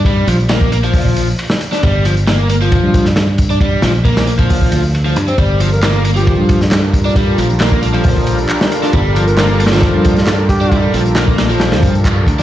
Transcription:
<<
  \new Staff \with { instrumentName = "Alto saxophone" } { \time 4/4 \key g \minor \tempo 4 = 135 r1 | r1 | r1 | r8. bes'16 bes'16 r8 g'16 g'16 r4. r16 |
r1 | r8. bes'16 bes'16 r2 r16 g'8~ | g'16 r2. r8. | }
  \new Staff \with { instrumentName = "Analog synth pad" } { \time 4/4 \key g \minor r1 | r1 | r1 | <g d' f' a' bes'>1~ |
<g d' f' a' bes'>1~ | <g d' f' a' bes'>1~ | <g d' f' a' bes'>1 | }
  \new Staff \with { instrumentName = "Overdriven electric guitar" } { \clef bass \time 4/4 \key g \minor g8 f16 r16 bes8 bes16 f4 r4 d'16 | g8 f16 r16 bes8 bes16 f4 r4 d'16 | g8 f16 r16 bes8 bes16 f4 r8 f16 r16 c'16 | g8 f16 r16 bes8 bes16 f4 r4 d'16 |
g8 f16 r16 bes8 bes16 f4 r4 d'16 | g8 f16 r16 bes8 bes16 f4 r4 d'16 | g8 f16 r16 bes8 bes16 f4 r4 d'16 | }
  \new Staff \with { instrumentName = "Fingered electric bass" } { \clef bass \time 4/4 \key g \minor g,8 bes,,2~ bes,,8 r4 | g,,2~ g,,16 g,4.~ g,16~ | g,8 bes,,2 d,4 g,16 r16 | g,,2~ g,,16 g,4.~ g,16~ |
g,8 bes,,2~ bes,,8 r4 | g,,2~ g,,16 g,4.~ g,16~ | g,8 bes,,2 g,4 d,16 r16 | }
  \new DrumStaff \with { instrumentName = "Drums" } \drummode { \time 4/4 <bd cymr>8 <cymr tamb>16 tamb16 <cymr sn tamb>16 bd16 <cymr tamb>16 <cymr tamb>16 <hho bd tamb>16 bd16 <cymr tamb>16 tamb16 <cymr tamb>16 sn16 <cymr tamb>16 <sn tamb>16 | <bd cymr tamb>8 <cymr tamb>16 tamb16 <cymr sn>8 <cymr tamb>16 tamb16 <bd cymr tamb>8 <bd cymr tamb>16 <sn tamb>16 <cymr sn tamb>8 <bd cymr tamb>16 tamb16 | <bd cymr tamb>8 <cymr sn tamb>16 tamb16 <bd cymr tamb>16 <cymr sn>16 tamb16 <bd cymr tamb>16 <hho bd tamb>16 bd16 <cymr tamb>16 tamb16 <cymr tamb>8 <cymr tamb>16 tamb16 | <bd cymr tamb>8 <cymr tamb>16 tamb16 <hc cymr sn tamb>8 <cymr tamb>16 tamb16 <bd cymr>8 <bd cymr tamb>16 <sn tamb>16 <hc cymr sn>8 <bd cymr tamb>16 tamb16 |
<bd cymr tamb>8 <cymr tamb>16 tamb16 <hc cymr sn tamb>16 bd16 <cymr tamb>16 <cymr tamb>16 <hho bd tamb>16 bd16 <cymr tamb>16 tamb16 <hc cymr tamb>16 sn16 <cymr tamb>16 <sn tamb>16 | <bd cymr tamb>8 <cymr tamb>16 tamb16 <hc cymr sn tamb>8 <cymr tamb>32 <cymr sn>32 <cymr sn tamb>32 <cymr sn>32 <bd cymr tamb>8 <bd cymr tamb>16 <sn tamb>16 <hc cymr sn tamb>8 <bd cymr tamb>16 tamb16 | <bd cymr tamb>8 <cymr tamb>16 tamb16 <hc cymr sn tamb>16 bd16 <cymr sn tamb>16 tamb16 <cymr sn tamb>16 <cymr sn>16 <bd cymr tamb>16 tamb16 <hc bd cymr tamb>8 <bd cymr tamb>16 <sn tamb>16 | }
>>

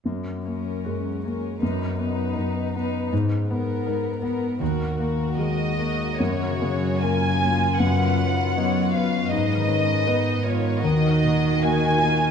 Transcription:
<<
  \new Staff \with { instrumentName = "Violin section" } { \time 4/4 \key fis \major \tempo 4 = 79 r1 | r2. dis''4 | cis''4 gis''4 fis''4. eis''8 | dis''4. cis''8 dis''4 gis''4 | }
  \new Staff \with { instrumentName = "Violin section" } { \time 4/4 \key fis \major << { r8 ais'4 ais'8 b'8 b'4 b'8 | r8 ais'4 ais'8 ais'8 ais'4 ais'8 | ais'8 gis'8 ais'4 b'4 cis''8 b'8 | b'2 ais'4 ais'4 | } \\ { r8 cis'4 cis'8 dis'8 dis'4 dis'8 | r8 b4 b8 fis'8 fis'4 fis'8 | fis'4 eis'2. | dis'8 cis'8 dis'8 eis'8 fis'4 fis'8 eis'8 | } >> }
  \new Staff \with { instrumentName = "Harp" } { \time 4/4 \key fis \major fis,8 cis'8 fis'8 cis'8 fis,8 b8 dis'8 b8 | gis,8 b8 dis'8 b8 dis8 ais4 ais8 | \tuplet 3/2 { fis,8 cis8 cis'8 ais'4 ais8 fis,8 fis8 dis'8 b'8 dis''8 fis'8 } | \tuplet 3/2 { gis,8 dis8 ais''8 b'8 dis''8 ais'8 dis8 dis'4 ais'8 dis''8 fis'8 } | }
  \new Staff \with { instrumentName = "Grand piano" } { \time 4/4 \key fis \major fis,8 ais8 gis8 ais8 fis,8 b8 b8 b8 | gis,8 b8 ais'8 b8 dis,8 ais8 gis8 ais8 | fis,8 cis8 <fis ais ais'>8 ais8 fis,8 fis8 <fis b dis''>8 b8 | gis,8 dis8 <b b' dis''>8 b8 dis,8 ais,8 <ais fis' dis''>8 ais8 | }
  \new Staff \with { instrumentName = "Cello section" } { \clef bass \time 4/4 \key fis \major fis,4 fis,4 fis,4 fis,4 | gis,4 gis,4 dis,4 dis,4 | fis,1 | gis,2 dis2 | }
>>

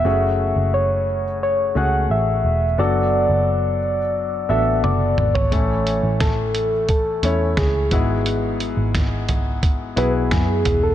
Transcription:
<<
  \new Staff \with { instrumentName = "Soft synth lead" } { \time 4/4 \key a \major \tempo 4 = 88 e''4 cis''4 cis''8 fis''8 e''4 | d''2~ d''8 e''8 d''8. cis''16~ | cis''4 a'4 a'4 gis'8. r16 | r2 r8 b'8 gis'8. a'16 | }
  \new Staff \with { instrumentName = "Upright piano" } { \time 4/4 \key a \major <a cis' fis' gis'>4.~ <a cis' fis' gis'>16 r8. <a cis' fis' gis'>4. | <b d' fis' a'>4.~ <b d' fis' a'>16 r8. <b d' fis' a'>4. | <a cis' e' a'>4.~ <a cis' e' a'>16 r8. <a cis' e' cis''>4 <b e' fis' gis'>8~ | <b e' fis' gis'>4~ <b e' fis' gis'>16 r4 r16 <b e' fis' gis'>4. | }
  \new Staff \with { instrumentName = "Upright piano" } { \clef bass \time 4/4 \key a \major cis4. r2 r8 | fis4. r2 r8 | <a, e>4. r2 <gis, gis>8~ | <gis, gis>4 r2. | }
  \new Staff \with { instrumentName = "Picked electric bass" } { \clef bass \time 4/4 \key a \major fis,,8. fis,,4.~ fis,,16 cis,8 a,,8 e,,8 | fis,,8. fis,,4.~ fis,,16 a,,8 fis,,8 gis,,8 | a,,8. a,,4.~ a,,16 e,8 cis,8 gis,,8~ | gis,,8. gis,,4.~ gis,,16 b,,8 fis,8 e,,8 | }
  \new DrumStaff \with { instrumentName = "Drums" } \drummode { \time 4/4 r4 r4 r4 r4 | r4 r4 r4 tommh8 toml16 tomfh16 | <hh bd>8 hh8 <hh bd sn>8 hh8 <hh bd>8 hh8 <hh bd sn>8 <hh bd>8 | hh8 hh8 <hh bd sn>8 <hh tomfh>8 <hh bd>8 hh8 <hh bd sn>8 <hh tomfh>8 | }
>>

